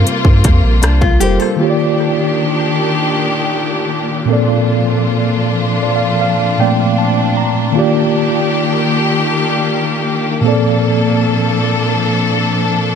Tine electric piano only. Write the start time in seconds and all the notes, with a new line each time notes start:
Already playing: G3 F4 A4 A#4 C5
1.20 G3 F4 A4 A#4 C5
1.56 D#3 A#3 F4
1.62 G4 C#5
1.70 D5
4.25 A#2 A#3 C4
4.31 A4 D5
5.83 D5
5.96 F5
6.21 F5
6.58 A#2 A3 A#3 C4 D5 G5
6.98 A5
7.37 A#5
7.72 D#3 A#3 F4
7.77 G4 D5
10.41 A#2 A#3 C4
10.46 A4 D5